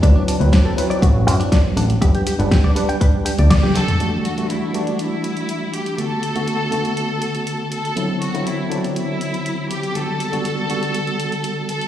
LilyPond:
<<
  \new Staff \with { instrumentName = "Clean electric guitar" } { \time 4/4 \key e \minor \tempo 4 = 121 d'16 d'16 d'16 r16 d'16 a'16 r16 d''16 fis'16 r8 d'16 d'16 r16 d'16 r16 | g'16 g'16 g'16 r16 g'16 d''16 r16 g''16 b'16 r16 g'16 d''16 d''16 g'16 g'16 r16 | r1 | r1 |
r1 | r1 | }
  \new Staff \with { instrumentName = "Violin section" } { \time 4/4 \key e \minor r1 | r2. r8 a'8~ | a'8 fis'8 e'8 d'8 e'4. g'8 | a'2.~ a'8 a'8~ |
a'8 fis'8 e'8 d'8 e'4. g'8 | a'2.~ a'8 a'8 | }
  \new Staff \with { instrumentName = "Tine electric piano" } { \time 4/4 \key e \minor <fis c' e' b'>8. <fis c' e' b'>8. <fis c' e' b'>2~ <fis c' e' b'>8 | <g d' b' fis''>8. <g d' b' fis''>8. <g d' b'>2~ <g d' b'>8 | <e g a d' fis'>8. <e g a d' fis'>8. <e g a d' fis'>2~ <e g a d' fis'>8 | <d a b fis'>8. <d a b fis'>8. <d a b fis'>2~ <d a b fis'>8 |
<d fis b c' e'>8. <d fis b c' e'>8. <d fis b c' e'>2~ <d fis b c' e'>8 | <d g b fis'>8. <d g b fis'>8. <d g b fis'>2~ <d g b fis'>8 | }
  \new Staff \with { instrumentName = "Fingered electric bass" } { \clef bass \time 4/4 \key e \minor d,16 r8 d,16 r4 a,,8 fis,16 r8. a,,16 r16 | g,,16 r8 g,,16 r4. r16 d,16 r4 | r1 | r1 |
r1 | r1 | }
  \new DrumStaff \with { instrumentName = "Drums" } \drummode { \time 4/4 <hh bd>8 hho16 hh16 <hh bd sn>8 hho16 hh16 <hh bd>8 hho16 hh16 <hh bd sn>8 hho16 hh16 | <hh bd>16 hh16 hho16 hh16 <hh bd sn>16 bd16 hho16 hh16 <hh bd>8 hho16 hh16 <hh bd sn tommh>16 tommh16 hho16 <hh toml>16 | hh8 hh16 hh16 hh8 hh16 hh16 hh8 hh16 hh16 hh8 hh16 hh16 | hh8 hh16 hh16 hh8 hh16 hh16 hh8 hh16 hh16 hh8 hh16 hh16 |
hh8 hh16 hh16 hh8 hh16 hh16 hh8 hh16 hh16 hh8 hh16 hh16 | hh8 hh16 hh16 hh8 hh16 hh16 hh16 hh16 hh16 hh16 hh8 hh16 hh16 | }
>>